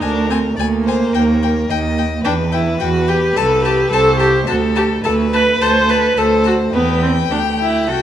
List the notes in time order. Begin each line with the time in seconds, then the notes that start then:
0.00 D2 D4 A#4 G#5
0.30 C4 G#5
0.56 D2 A#3 D5 G#5
0.84 C5 G#5
1.13 D#2 A#4 G5
1.43 G5
1.69 D#2 D#5 G5
1.98 G5
2.24 E2 D4 B4 G5
2.52 E4 G5
2.80 E2 F#4 G5
3.08 G4 G5
3.36 C2 A4 A5
3.65 G4 A5
3.92 C2 A4 C5 A5
4.20 G4 A5
4.47 D2 F#4 A4 A5
4.76 G4 A5
5.04 D2 A4 B4 A5
5.33 B4 A5
5.60 D2 A4 C5 A5
5.90 B4 A5
6.16 D2 A4 C5 A5
6.44 F#4 A5
6.72 E2 B3 B4 G5
7.03 C4
7.30 D2 D4 G4
7.60 E4
7.87 C2 F#4 A4 G5